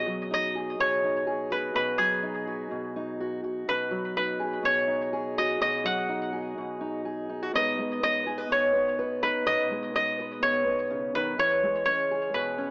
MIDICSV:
0, 0, Header, 1, 3, 480
1, 0, Start_track
1, 0, Key_signature, 5, "major"
1, 0, Tempo, 481155
1, 1743, Time_signature, 4, 2, 24, 8
1, 12675, End_track
2, 0, Start_track
2, 0, Title_t, "Koto"
2, 0, Program_c, 0, 107
2, 0, Note_on_c, 0, 75, 85
2, 333, Note_off_c, 0, 75, 0
2, 337, Note_on_c, 0, 75, 74
2, 801, Note_on_c, 0, 73, 71
2, 1514, Note_on_c, 0, 71, 62
2, 1746, Note_off_c, 0, 71, 0
2, 1750, Note_on_c, 0, 71, 70
2, 1879, Note_off_c, 0, 75, 0
2, 1975, Note_on_c, 0, 68, 60
2, 2454, Note_off_c, 0, 73, 0
2, 3522, Note_off_c, 0, 71, 0
2, 3679, Note_on_c, 0, 71, 67
2, 3940, Note_off_c, 0, 68, 0
2, 4156, Note_off_c, 0, 71, 0
2, 4160, Note_on_c, 0, 71, 63
2, 4641, Note_on_c, 0, 73, 66
2, 5369, Note_on_c, 0, 75, 63
2, 5599, Note_off_c, 0, 75, 0
2, 5603, Note_on_c, 0, 75, 78
2, 5842, Note_on_c, 0, 78, 79
2, 5932, Note_off_c, 0, 71, 0
2, 6294, Note_off_c, 0, 73, 0
2, 7145, Note_off_c, 0, 75, 0
2, 7235, Note_off_c, 0, 78, 0
2, 7536, Note_on_c, 0, 75, 82
2, 8010, Note_off_c, 0, 75, 0
2, 8014, Note_on_c, 0, 75, 83
2, 8499, Note_on_c, 0, 73, 70
2, 9206, Note_on_c, 0, 71, 63
2, 9439, Note_off_c, 0, 75, 0
2, 9443, Note_on_c, 0, 75, 79
2, 9929, Note_off_c, 0, 75, 0
2, 9933, Note_on_c, 0, 75, 75
2, 10151, Note_off_c, 0, 73, 0
2, 10402, Note_on_c, 0, 73, 77
2, 10978, Note_off_c, 0, 71, 0
2, 11125, Note_on_c, 0, 71, 69
2, 11364, Note_off_c, 0, 73, 0
2, 11368, Note_on_c, 0, 73, 77
2, 11475, Note_off_c, 0, 75, 0
2, 11823, Note_off_c, 0, 73, 0
2, 11827, Note_on_c, 0, 73, 75
2, 12308, Note_off_c, 0, 71, 0
2, 12312, Note_on_c, 0, 71, 60
2, 12675, Note_off_c, 0, 71, 0
2, 12675, Note_off_c, 0, 73, 0
2, 12675, End_track
3, 0, Start_track
3, 0, Title_t, "Steel-string acoustic guitar"
3, 0, Program_c, 1, 25
3, 0, Note_on_c, 1, 47, 57
3, 0, Note_on_c, 1, 68, 47
3, 64, Note_on_c, 1, 54, 51
3, 304, Note_on_c, 1, 63, 42
3, 539, Note_off_c, 1, 68, 0
3, 551, Note_on_c, 1, 68, 47
3, 786, Note_off_c, 1, 47, 0
3, 790, Note_on_c, 1, 47, 51
3, 1031, Note_off_c, 1, 63, 0
3, 1035, Note_on_c, 1, 63, 46
3, 1260, Note_off_c, 1, 68, 0
3, 1264, Note_on_c, 1, 68, 47
3, 1498, Note_on_c, 1, 66, 51
3, 1739, Note_off_c, 1, 47, 0
3, 1743, Note_on_c, 1, 47, 60
3, 1975, Note_off_c, 1, 54, 0
3, 1979, Note_on_c, 1, 54, 52
3, 2219, Note_off_c, 1, 63, 0
3, 2223, Note_on_c, 1, 63, 46
3, 2463, Note_off_c, 1, 66, 0
3, 2467, Note_on_c, 1, 66, 43
3, 2701, Note_off_c, 1, 47, 0
3, 2705, Note_on_c, 1, 47, 50
3, 2952, Note_off_c, 1, 63, 0
3, 2956, Note_on_c, 1, 63, 48
3, 3194, Note_off_c, 1, 66, 0
3, 3198, Note_on_c, 1, 66, 49
3, 3429, Note_off_c, 1, 66, 0
3, 3433, Note_on_c, 1, 66, 49
3, 3670, Note_off_c, 1, 47, 0
3, 3674, Note_on_c, 1, 47, 63
3, 3896, Note_off_c, 1, 54, 0
3, 3900, Note_on_c, 1, 54, 49
3, 3930, Note_off_c, 1, 68, 0
3, 4152, Note_off_c, 1, 63, 0
3, 4156, Note_on_c, 1, 63, 45
3, 4388, Note_on_c, 1, 68, 51
3, 4418, Note_off_c, 1, 66, 0
3, 4615, Note_off_c, 1, 47, 0
3, 4619, Note_on_c, 1, 47, 53
3, 4857, Note_off_c, 1, 63, 0
3, 4861, Note_on_c, 1, 63, 48
3, 5113, Note_off_c, 1, 68, 0
3, 5117, Note_on_c, 1, 68, 53
3, 5363, Note_on_c, 1, 66, 49
3, 5566, Note_off_c, 1, 66, 0
3, 5590, Note_off_c, 1, 47, 0
3, 5594, Note_on_c, 1, 47, 61
3, 5812, Note_off_c, 1, 54, 0
3, 5824, Note_on_c, 1, 54, 50
3, 6067, Note_off_c, 1, 63, 0
3, 6071, Note_on_c, 1, 63, 46
3, 6306, Note_off_c, 1, 68, 0
3, 6310, Note_on_c, 1, 68, 49
3, 6555, Note_off_c, 1, 47, 0
3, 6559, Note_on_c, 1, 47, 49
3, 6786, Note_off_c, 1, 63, 0
3, 6790, Note_on_c, 1, 63, 47
3, 7029, Note_off_c, 1, 68, 0
3, 7033, Note_on_c, 1, 68, 50
3, 7274, Note_off_c, 1, 63, 0
3, 7274, Note_on_c, 1, 63, 45
3, 7407, Note_off_c, 1, 63, 0
3, 7407, Note_on_c, 1, 66, 39
3, 7507, Note_off_c, 1, 54, 0
3, 7511, Note_off_c, 1, 47, 0
3, 7515, Note_on_c, 1, 47, 59
3, 7517, Note_off_c, 1, 66, 0
3, 7522, Note_on_c, 1, 56, 45
3, 7530, Note_on_c, 1, 59, 47
3, 7536, Note_on_c, 1, 63, 49
3, 7540, Note_off_c, 1, 68, 0
3, 7544, Note_on_c, 1, 71, 53
3, 7758, Note_off_c, 1, 56, 0
3, 7762, Note_on_c, 1, 56, 50
3, 8003, Note_off_c, 1, 59, 0
3, 8007, Note_on_c, 1, 59, 45
3, 8241, Note_off_c, 1, 71, 0
3, 8245, Note_on_c, 1, 68, 51
3, 8357, Note_off_c, 1, 68, 0
3, 8357, Note_on_c, 1, 71, 43
3, 8468, Note_off_c, 1, 47, 0
3, 8472, Note_on_c, 1, 47, 49
3, 8728, Note_off_c, 1, 59, 0
3, 8732, Note_on_c, 1, 59, 49
3, 8953, Note_off_c, 1, 71, 0
3, 8967, Note_on_c, 1, 71, 55
3, 9195, Note_off_c, 1, 63, 0
3, 9207, Note_on_c, 1, 63, 49
3, 9402, Note_off_c, 1, 47, 0
3, 9431, Note_on_c, 1, 47, 57
3, 9677, Note_off_c, 1, 56, 0
3, 9681, Note_on_c, 1, 56, 52
3, 9921, Note_off_c, 1, 59, 0
3, 9925, Note_on_c, 1, 59, 44
3, 10172, Note_off_c, 1, 71, 0
3, 10176, Note_on_c, 1, 71, 54
3, 10390, Note_off_c, 1, 47, 0
3, 10406, Note_on_c, 1, 47, 51
3, 10643, Note_off_c, 1, 59, 0
3, 10647, Note_on_c, 1, 59, 49
3, 10878, Note_on_c, 1, 49, 53
3, 11113, Note_off_c, 1, 49, 0
3, 11129, Note_on_c, 1, 51, 54
3, 11328, Note_off_c, 1, 47, 0
3, 11348, Note_off_c, 1, 51, 0
3, 11352, Note_on_c, 1, 52, 56
3, 11357, Note_off_c, 1, 63, 0
3, 11597, Note_off_c, 1, 56, 0
3, 11601, Note_on_c, 1, 56, 53
3, 11839, Note_off_c, 1, 59, 0
3, 11843, Note_on_c, 1, 61, 51
3, 11873, Note_off_c, 1, 71, 0
3, 12082, Note_on_c, 1, 68, 50
3, 12311, Note_on_c, 1, 47, 57
3, 12541, Note_off_c, 1, 61, 0
3, 12553, Note_on_c, 1, 61, 50
3, 12675, Note_off_c, 1, 47, 0
3, 12675, Note_off_c, 1, 52, 0
3, 12675, Note_off_c, 1, 56, 0
3, 12675, Note_off_c, 1, 61, 0
3, 12675, Note_off_c, 1, 68, 0
3, 12675, End_track
0, 0, End_of_file